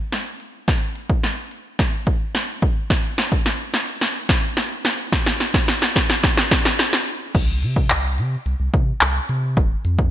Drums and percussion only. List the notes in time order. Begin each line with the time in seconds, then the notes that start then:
0.12 snare, closed hi-hat
0.40 closed hi-hat
0.68 kick, snare, closed hi-hat
0.96 closed hi-hat
1.10 kick
1.24 snare, closed hi-hat
1.51 closed hi-hat
1.79 kick, snare, closed hi-hat
2.07 kick, closed hi-hat
2.35 snare, closed hi-hat
2.62 kick, closed hi-hat
2.90 kick, snare, closed hi-hat
3.18 snare, closed hi-hat
3.32 kick
3.46 snare, closed hi-hat
3.74 snare, closed hi-hat
4.01 snare, closed hi-hat
4.29 kick, snare, closed hi-hat
4.57 snare, closed hi-hat
4.85 snare, closed hi-hat
5.12 kick, snare, closed hi-hat
5.26 snare
5.40 snare, closed hi-hat
5.54 kick, snare
5.68 snare, closed hi-hat
5.82 snare
5.96 kick, snare, closed hi-hat
6.10 snare
6.24 kick, snare, closed hi-hat
6.37 snare
6.51 kick, snare, closed hi-hat
6.65 snare
6.79 snare, closed hi-hat
6.93 snare
7.07 closed hi-hat
7.35 kick, closed hi-hat, crash
7.62 closed hi-hat
7.76 kick
7.90 clap, closed hi-hat
8.18 closed hi-hat
8.46 closed hi-hat
8.74 kick, closed hi-hat
9.01 clap, closed hi-hat
9.29 closed hi-hat
9.57 kick, closed hi-hat
9.85 closed hi-hat
9.99 kick